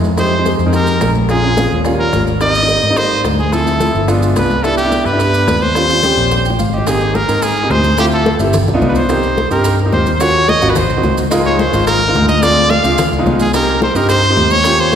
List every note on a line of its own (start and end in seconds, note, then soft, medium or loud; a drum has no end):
0.00 0.54 F2 medium
0.00 high conga medium
0.00 maracas soft
0.17 0.32 G#3 medium
0.17 0.32 C4 medium
0.17 0.33 D#4 medium
0.17 0.33 G4 medium
0.17 0.57 C5 medium
0.17 high bongo medium
0.17 high conga soft
0.17 maracas medium
0.32 high conga soft
0.38 0.58 G#3 medium
0.38 0.58 C4 medium
0.38 0.58 D#4 medium
0.38 0.58 G4 medium
0.46 high bongo medium
0.46 high conga medium
0.46 maracas medium
0.59 0.98 F2 medium
0.59 maracas soft
0.66 0.71 G#3 medium
0.66 0.71 C4 medium
0.66 0.71 D#4 medium
0.66 0.72 A#4 medium
0.73 1.12 G#3 medium
0.73 1.12 C4 medium
0.73 1.13 D#4 medium
0.73 1.13 G4 medium
0.73 1.13 A#4 medium
0.73 high bongo medium
0.73 maracas medium
0.87 high conga soft
0.87 maracas medium
1.01 1.66 A#1 medium
1.01 high bongo medium
1.01 low bongo medium
1.01 high conga medium
1.01 maracas medium
1.15 high conga medium
1.15 maracas soft
1.29 1.39 G#3 medium
1.29 1.39 C4 medium
1.29 1.39 C#4 medium
1.29 1.39 F4 medium
1.29 1.82 G#4 loud
1.29 high bongo medium
1.29 high conga soft
1.29 maracas medium
1.43 1.53 G#3 medium
1.43 1.53 C4 medium
1.43 1.53 C#4 medium
1.43 1.53 F4 medium
1.43 high bongo soft
1.43 high conga soft
1.57 1.85 G#3 medium
1.57 1.85 C4 medium
1.57 1.84 C#4 medium
1.57 1.84 F4 medium
1.57 high bongo medium
1.57 high conga medium
1.57 maracas medium
1.71 2.10 D#2 medium
1.71 high bongo soft
1.71 high conga soft
1.71 maracas soft
1.85 2.29 G3 medium
1.85 2.30 A#3 medium
1.85 2.30 C#4 medium
1.85 2.30 F4 medium
1.85 high bongo medium
1.85 high conga soft
1.85 maracas medium
1.99 2.25 A#4 medium
1.99 high bongo soft
1.99 high conga soft
2.13 2.77 G#1 medium
2.13 high bongo medium
2.13 low bongo medium
2.13 high conga medium
2.13 maracas medium
2.27 maracas soft
2.40 2.55 G3 medium
2.40 2.55 A#3 medium
2.40 2.56 C4 medium
2.40 2.56 D#4 medium
2.40 2.99 D#5 loud
2.40 high bongo medium
2.40 high conga soft
2.40 maracas medium
2.55 high conga soft
2.55 maracas medium
2.62 2.81 G3 medium
2.62 2.81 A#3 medium
2.62 2.82 C4 medium
2.62 2.82 D#4 medium
2.68 high bongo medium
2.68 high conga soft
2.68 maracas medium
2.83 3.22 G#2 medium
2.83 high conga soft
2.83 maracas soft
2.89 2.94 G3 medium
2.89 2.95 A#3 medium
2.89 2.95 C4 medium
2.89 2.95 D#4 medium
2.96 3.36 G3 medium
2.96 3.36 A#3 medium
2.96 3.36 C4 medium
2.96 3.36 D#4 medium
2.96 3.25 C5 loud
2.96 high bongo medium
2.96 high conga soft
2.96 maracas medium
3.12 high conga soft
3.24 3.89 D2 medium
3.24 high bongo medium
3.24 low bongo medium
3.24 high conga medium
3.24 maracas medium
3.39 3.55 G#4 medium
3.39 high conga medium
3.39 maracas soft
3.52 3.62 F3 medium
3.52 3.62 A3 medium
3.52 3.62 C4 medium
3.52 3.62 E4 medium
3.52 4.09 A4 medium
3.52 high bongo medium
3.52 high conga soft
3.52 maracas medium
3.66 3.76 F3 medium
3.66 3.76 A3 medium
3.66 3.76 C4 medium
3.66 3.76 E4 medium
3.66 high bongo soft
3.66 high conga soft
3.66 maracas medium
3.79 4.08 F3 medium
3.79 4.08 A3 medium
3.79 4.08 C4 medium
3.79 4.08 E4 medium
3.79 high bongo medium
3.79 high conga loud
3.79 maracas medium
3.94 4.33 G1 medium
3.94 high bongo soft
3.94 high conga soft
3.94 maracas soft
4.07 4.52 G#3 medium
4.07 4.52 B3 medium
4.07 4.53 D4 medium
4.07 4.53 F4 medium
4.07 high bongo medium
4.07 high conga soft
4.07 maracas medium
4.22 high bongo soft
4.22 high conga soft
4.22 maracas medium
4.36 5.00 C2 medium
4.36 4.64 B4 medium
4.36 high bongo medium
4.36 low bongo medium
4.36 high conga medium
4.36 maracas medium
4.50 high conga medium
4.50 maracas soft
4.63 4.78 G3 medium
4.63 4.78 B3 medium
4.63 4.78 D4 medium
4.63 4.79 E4 medium
4.63 4.76 A4 medium
4.63 high bongo medium
4.63 maracas medium
4.77 5.07 G4 medium
4.77 high conga soft
4.77 maracas medium
4.84 5.04 G3 medium
4.84 5.04 B3 medium
4.84 5.04 D4 medium
4.84 5.05 E4 medium
4.92 high bongo medium
4.92 high conga medium
4.92 maracas medium
5.05 5.44 G2 medium
5.05 5.63 B4 medium
5.05 high conga soft
5.05 maracas soft
5.12 5.17 G3 medium
5.12 5.17 B3 medium
5.12 5.17 D4 medium
5.12 5.18 E4 medium
5.19 5.58 G3 medium
5.19 5.58 B3 medium
5.19 5.59 D4 medium
5.19 5.59 G4 medium
5.19 high bongo medium
5.19 high conga soft
5.19 maracas medium
5.34 high conga soft
5.34 maracas medium
5.47 6.12 D#2 medium
5.47 high bongo medium
5.47 low bongo medium
5.47 high conga medium
5.47 maracas medium
5.62 6.59 C5 loud
5.62 high conga medium
5.62 maracas soft
5.75 5.85 G3 medium
5.75 5.85 C4 medium
5.75 5.85 C#4 medium
5.75 5.85 F4 medium
5.75 high bongo medium
5.75 maracas medium
5.88 5.99 G3 medium
5.88 5.99 C4 medium
5.88 5.99 C#4 medium
5.88 5.99 F4 medium
5.88 high bongo soft
5.88 high conga soft
5.88 maracas medium
6.03 6.42 G3 medium
6.03 6.42 C4 medium
6.03 6.42 C#4 medium
6.03 6.43 G4 loud
6.03 high bongo medium
6.03 high conga medium
6.03 maracas medium
6.17 6.56 A#1 medium
6.17 high bongo soft
6.17 high conga soft
6.17 maracas soft
6.31 high bongo medium
6.31 high conga soft
6.31 maracas medium
6.45 6.58 G5 medium
6.45 high conga soft
6.45 maracas medium
6.50 low bongo medium
6.59 7.23 G#1 medium
6.59 6.72 F5 medium
6.59 high conga medium
6.59 maracas medium
6.72 6.88 G4 medium
6.72 6.86 D#5 medium
6.72 maracas soft
6.78 low bongo medium
6.86 7.16 A#3 medium
6.86 7.16 C4 medium
6.86 7.16 D#4 medium
6.86 7.17 G4 medium
6.86 7.17 G#4 medium
6.86 high bongo medium
6.86 high conga soft
6.86 maracas medium
7.01 high bongo soft
7.01 high conga soft
7.01 maracas soft
7.15 7.44 A#4 medium
7.15 high bongo medium
7.15 high conga medium
7.15 maracas soft
7.28 7.67 G#2 medium
7.28 7.52 A#3 medium
7.28 7.53 C4 medium
7.28 7.53 D#4 medium
7.28 7.53 A#4 medium
7.28 high bongo soft
7.28 high conga soft
7.28 maracas medium
7.42 7.72 G#4 loud
7.42 high bongo medium
7.42 high conga soft
7.42 maracas medium
7.56 high bongo soft
7.56 high conga soft
7.56 maracas soft
7.63 7.87 A#3 medium
7.63 7.87 C4 medium
7.63 7.88 D#4 medium
7.63 7.88 G4 medium
7.70 8.34 D2 medium
7.70 7.98 C5 loud
7.70 high bongo soft
7.70 low bongo medium
7.70 high conga medium
7.70 maracas soft
7.84 high conga medium
7.84 maracas medium
7.98 8.27 A3 medium
7.98 8.27 C4 medium
7.98 8.27 E4 medium
7.98 8.28 F4 medium
7.98 8.05 G4 loud
7.98 high bongo medium
7.98 maracas medium
8.12 8.38 A4 medium
8.12 high bongo soft
8.12 high conga soft
8.12 maracas soft
8.26 high bongo medium
8.26 high conga loud
8.26 maracas soft
8.39 8.65 G1 loud
8.39 8.53 A3 medium
8.39 8.53 C4 medium
8.39 8.54 E4 medium
8.39 8.54 G4 medium
8.39 high bongo soft
8.39 high conga soft
8.39 maracas medium
8.53 high bongo medium
8.53 high conga soft
8.53 low conga medium
8.53 maracas medium
8.67 8.80 B1 medium
8.67 high bongo soft
8.67 high conga soft
8.67 low conga medium
8.67 maracas soft
8.74 8.98 B3 medium
8.74 8.98 D4 medium
8.74 8.99 D#4 medium
8.74 8.99 F4 medium
8.81 9.45 C2 medium
8.81 high bongo soft
8.81 low bongo medium
8.81 high conga medium
8.81 maracas soft
8.89 8.98 B4 medium
8.95 9.51 C5 loud
8.95 high conga medium
8.95 maracas medium
9.09 9.38 A#3 medium
9.09 9.38 C4 medium
9.09 9.38 D#4 medium
9.09 9.39 G4 medium
9.09 high bongo medium
9.09 high conga soft
9.09 maracas medium
9.23 high bongo soft
9.23 high conga soft
9.23 maracas soft
9.37 high bongo medium
9.37 high conga medium
9.37 maracas soft
9.50 9.90 G2 medium
9.50 9.75 A#3 medium
9.50 9.75 C4 medium
9.50 9.75 D#4 medium
9.50 9.75 G4 medium
9.50 9.77 A#4 medium
9.50 high bongo soft
9.50 high conga soft
9.50 maracas medium
9.64 high bongo medium
9.64 high conga soft
9.64 maracas medium
9.79 high bongo soft
9.79 high conga soft
9.79 maracas soft
9.85 10.09 A#3 medium
9.85 10.10 C4 medium
9.85 10.10 D#4 medium
9.85 10.10 G4 medium
9.92 10.57 D#2 medium
9.92 10.13 C5 medium
9.92 high bongo soft
9.92 low bongo loud
9.92 high conga medium
9.92 maracas soft
10.06 high conga medium
10.06 maracas medium
10.13 10.22 C5 medium
10.20 10.49 A#3 medium
10.20 10.49 C#4 medium
10.20 10.50 F4 medium
10.20 10.50 F#4 medium
10.20 10.51 C#5 loud
10.20 high bongo medium
10.20 high conga soft
10.20 maracas medium
10.34 high bongo soft
10.34 high conga soft
10.34 maracas soft
10.48 10.71 D#5 loud
10.48 high bongo medium
10.48 high conga medium
10.48 maracas soft
10.61 10.88 G#1 medium
10.61 10.76 A#3 medium
10.61 10.76 C#4 medium
10.61 10.76 F4 medium
10.61 10.76 F#4 medium
10.61 high bongo soft
10.61 high conga soft
10.61 maracas medium
10.69 10.78 B4 medium
10.75 11.18 C5 medium
10.75 high bongo medium
10.75 high conga soft
10.75 low conga medium
10.75 maracas medium
10.89 11.02 C2 medium
10.89 high bongo soft
10.89 high conga soft
10.89 maracas soft
10.96 11.21 A#3 medium
10.96 11.21 C4 medium
10.96 11.21 D#4 medium
10.96 11.21 F#4 medium
11.03 11.67 C#2 medium
11.03 high bongo soft
11.03 low bongo medium
11.03 high conga medium
11.03 maracas soft
11.17 high conga medium
11.17 maracas medium
11.31 11.60 G#3 loud
11.31 11.60 A#3 medium
11.31 11.61 D#4 medium
11.31 11.61 F4 loud
11.31 high bongo medium
11.31 high conga soft
11.31 maracas medium
11.45 11.61 C#5 medium
11.45 high bongo soft
11.45 high conga soft
11.45 maracas soft
11.59 11.86 C5 medium
11.59 high bongo medium
11.59 high conga medium
11.59 maracas soft
11.72 12.11 G#1 medium
11.72 11.97 G#3 medium
11.72 11.97 A#3 medium
11.72 11.97 D#4 medium
11.72 11.98 F4 medium
11.72 high bongo soft
11.72 high conga soft
11.72 maracas medium
11.87 12.25 A#4 loud
11.87 high bongo medium
11.87 high conga soft
11.87 maracas medium
12.01 high bongo soft
12.01 high conga soft
12.01 maracas soft
12.08 12.32 G#3 medium
12.08 12.32 A#3 medium
12.08 12.32 D#4 medium
12.08 12.33 F4 medium
12.14 12.79 D2 loud
12.14 high bongo soft
12.14 low bongo medium
12.14 high conga medium
12.14 maracas soft
12.28 12.44 D#5 loud
12.28 high conga medium
12.28 maracas medium
12.42 12.71 G#3 medium
12.42 12.71 C4 medium
12.42 12.72 D4 medium
12.42 12.72 F4 medium
12.42 12.71 D5 loud
12.42 high bongo medium
12.42 maracas medium
12.57 high bongo soft
12.57 high conga soft
12.70 13.12 F5 loud
12.70 high bongo medium
12.70 high conga medium
12.70 maracas soft
12.84 13.10 C#2 medium
12.84 12.98 G#3 medium
12.84 12.98 C4 medium
12.84 12.98 D4 medium
12.84 12.98 F4 medium
12.84 high bongo soft
12.84 high conga soft
12.84 maracas medium
12.98 high bongo medium
12.98 high conga soft
12.98 low conga medium
12.98 maracas medium
13.12 13.25 C#2 medium
13.12 high bongo soft
13.12 high conga soft
13.12 maracas soft
13.18 13.43 G#3 medium
13.18 13.43 B3 medium
13.18 13.43 D#4 medium
13.18 13.43 F4 medium
13.26 13.90 C2 medium
13.26 high bongo soft
13.26 low bongo medium
13.26 high conga medium
13.26 maracas soft
13.40 13.53 G#4 medium
13.40 high conga medium
13.40 maracas medium
13.53 13.83 A#3 medium
13.53 13.83 C4 medium
13.53 13.83 D#4 medium
13.53 13.83 G4 medium
13.53 13.80 A#4 medium
13.53 high bongo medium
13.53 high conga soft
13.53 maracas medium
13.68 high bongo soft
13.68 high conga soft
13.68 maracas soft
13.82 13.98 C5 medium
13.82 high bongo medium
13.82 high conga loud
13.82 maracas soft
13.95 14.34 G2 medium
13.95 14.19 A#3 medium
13.95 14.19 C4 medium
13.95 14.20 D#4 medium
13.95 14.20 G4 medium
13.95 14.09 A#4 medium
13.95 high bongo soft
13.95 high conga soft
13.95 maracas medium
14.09 14.53 C5 loud
14.09 high bongo medium
14.09 high conga soft
14.09 maracas medium
14.23 high bongo soft
14.23 high conga soft
14.23 maracas soft
14.29 14.54 A#3 medium
14.29 14.54 C4 medium
14.29 14.54 D#4 medium
14.29 14.54 G4 medium
14.37 14.95 D#2 medium
14.37 high bongo soft
14.37 low bongo medium
14.37 high conga medium
14.37 maracas soft
14.50 14.81 C#5 loud
14.50 high conga medium
14.50 maracas medium
14.64 14.93 A#3 medium
14.64 14.94 C#4 medium
14.64 14.94 F4 medium
14.64 14.94 G4 medium
14.64 high bongo medium
14.64 high conga soft
14.64 maracas medium
14.78 14.95 C5 loud
14.78 high bongo soft
14.78 high conga soft
14.78 maracas soft